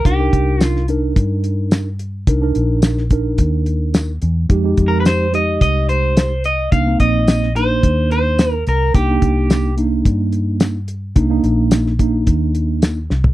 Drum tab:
HH |x-x-x-x-x-x-x-x-|x-x-x-x-x-x-x-x-|x-x-x-x-x-x-x-x-|x-x-x-x-x-x-x-x-|
TB |----x-------x---|----x-------x---|----x-------x---|----x-------x---|
SD |----oo------o---|----oo------o---|----o-------o---|----oo------o---|
FT |----------------|----------------|----------------|----------------|
BD |o-o-----o-------|o-----o-o-------|o-o-----o-------|o-o-----o-------|

HH |x-x-x-x-x-x-x-x-|x-x-x-x-x-x-x---|
TB |----x-------x---|----x-------x---|
SD |----o-------o---|----oo------o-o-|
FT |----------------|---------------o|
BD |o-o-----o-------|o-----o-o-------|